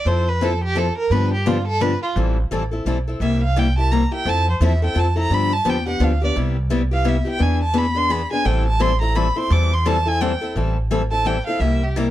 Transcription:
0.05 F2 F3 C4 E4 A4 C5
0.29 B4
0.41 F3 C4 E4 A4
0.64 G4
0.75 F3 C4 E4 A4
0.97 A#4
1.10 G2 D3 F3 B3 D4 G4 B4
1.34 G4
1.46 D3 F3 B3 D4 F4 G4
1.67 A4
1.80 D3 F3 B3 D4 G4 B4
2.02 F4
2.16 A1 E3 G3 C4 E4 A4
2.51 A1 E3 G3 C4 E4 A4
2.71 C4 E4 A4
2.85 B1 E3 G3 C4 E4 A4
3.08 C4 E4 A4
3.20 C2 C3 G3 A#3 E4 G4 E5
3.43 F5
3.56 C3 G3 A#3 E4 G4 G5
3.78 A#3 E4 G4 A5
3.92 C3 G3 A#3 E4 G4 A#5
4.11 A#3 E4 G4 G5
4.25 F2 F3 C4 E4 A4 A5
4.51 C5
4.60 E2 F3 C4 E4 A4 E5
4.82 C4 E4 A4 G5
4.95 F2 F3 C4 E4 A4 A5
5.16 C4 E4 A4 A#5
5.30 G2 D3 F3 B3 D4 G4 B5
5.53 A5
5.65 E2 D3 F3 B3 D4 G4
5.69 G5
5.86 B3 D4 G4 F#5
6.00 D2 D3 F3 B3 D4 G4 F5
6.21 B3 D4 G4 D5
6.36 C2 C3 G3 B3 E4 G4
6.70 C3 G3 B3 E4 G4
6.91 B3 E4 G4 F5
7.04 C3 G3 B3 E4 G4 E5
7.25 B3 E4 G4
7.30 G5
7.39 E2 E3 B3 D4 G#4 G#5
7.63 A5
7.74 E3 B3 D4 G#4
7.78 B5
7.95 B3 D4 G#4 C6
8.09 E3 B3 D4 G#4 B5
8.31 B3 D4 G#4 G#5
8.45 A1 E3 G3 C4 E4 A4 G5
8.67 A5
8.80 E3 G3 C4 E4 A4 C6
9.01 C4 E4 A4 A#5
9.15 E3 G3 C4 E4 A4 B5
9.36 C4 E4 A4 C6
9.50 E2 E3 G3 C4 E4 A4 D6
9.73 C6
9.86 E3 G3 C4 E4 A4 A5
10.06 C4 E4 A4 G#5
10.21 E3 G3 C4 E4 A4 G5
10.41 C4 E4 A4
10.56 A1 E3 G3 C4 E4 A4
10.91 E3 G3 C4 E4 A4
11.11 C4 E4 A4 A5
11.25 E3 G3 C4 E4 A4 G5
11.46 C4 E4 A4 F5
11.60 C2 C3 G3 A#3 E4 G4 E5
11.83 G4
11.96 C3 G3 A#3 E4 G4 A#4

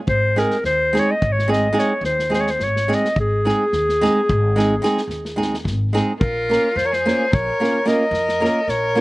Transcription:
0.07 G#1 C5, kick
0.36 G#3 C4 D#4 G#4 A#4, snare
0.51 snare
0.64 D#2 C5, snare
0.93 G#3 C4 D#4 G#4, snare
0.99 C#5
1.11 D#5
1.22 G#1, kick
1.32 C#5
1.39 snare
1.48 G#3 C4 D#4 G#4
1.52 D#5, snare
1.73 G#3 C4 D#4 G#4
1.79 C#5, snare
2.01 D#2 C5, snare
2.19 snare
2.30 G#3 C4 D#4 G#4, snare
2.35 C5
2.40 C#5
2.47 C5, snare
2.59 G#1, snare
2.63 C#5
2.76 snare
2.88 G#3 C4 D#4 G#4, snare
2.95 D#5
3.05 snare
3.16 G#1, kick
3.20 G#4
3.45 G#3 C4 D#4 G#4, snare
3.73 D#2, snare
3.89 snare
4.01 G#3 C4 D#4 G#4, snare
4.29 G#1, kick
4.56 G#3 C4 D#4 G#4, snare
4.82 G#3 C4 D#4 G#4, snare
4.98 snare
5.08 D#2, snare
5.25 snare
5.36 G#3 C4 D#4 G#4
5.42 snare
5.54 snare
5.64 G#1, kick, snare
5.93 G#3 C4 D#4 G#4, snare
6.20 A#1 F4 A#4, kick
6.49 A#3 C#4 F4 A#4, snare
6.76 F2 F4 C5, snare
6.85 A#4 C#5
6.91 G#4 C5, snare
7.06 A#3 C#4 F4 A#4, snare
7.31 A#1 A#4 C#5, kick
7.60 A#3 C#4 F4 A#4, snare
7.85 A#3 C#4 F4 A#4 D#5, snare
8.11 F2, snare
8.29 snare
8.40 A#3 C#4 F4 A#4
8.45 snare
8.68 A#1 A#4 C#5, snare
8.95 A#3 C#4 F4 A#4

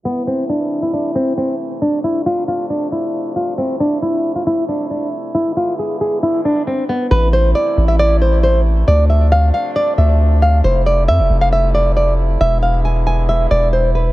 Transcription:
0.05 C3 E3 A3 B3 E4
0.27 C4
0.49 D4
0.82 E4
0.94 D4
1.16 C4
1.38 C4
1.82 C3 F3 D4
2.04 E4
2.26 F4
2.48 F4
2.70 D4
2.92 E4
3.36 F4
3.58 C3 C4 E4
3.80 D4
4.02 E4
4.36 F4
4.47 E4
4.69 D4
4.91 D4
5.35 D3 G#3 B3 E4
5.57 F4
5.79 G#4
6.01 G#4
6.23 E4
6.45 D4
6.67 C4
6.89 B3
7.11 A1 C3 E3 A3 E4 B4
7.33 C5
7.55 D5
7.78 A1
7.88 E5
7.99 D5
8.22 C5
8.43 C5
8.88 D2 C3 F3 D4 D5
9.10 E5
9.32 F5
9.54 F5
9.76 D5
9.98 D2 E5
10.42 F5
10.64 F1 F3 A3 E4 C5
10.86 D5
11.08 F2 E5
11.19 F1
11.30 F1
11.41 F5
11.53 E5
11.75 D5
11.97 D5
12.41 E1 D3 G#3 B3 E5
12.63 F5
12.85 G#5
13.07 G#5
13.29 E5
13.51 E1 D5
13.73 C5
13.95 B4

